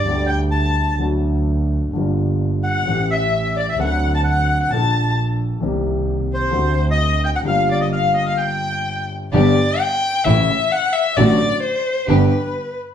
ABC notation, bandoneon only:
X:1
M:4/4
L:1/16
Q:1/4=130
K:Gm
V:1 name="Bandoneon"
d2 g2 a4 z8 | z6 ^f4 =e4 d e | ^f3 a f3 f a4 z4 | z6 c4- c e3 g ^f |
f2 d e f2 e f g6 z2 | [K:G] z16 | z16 |]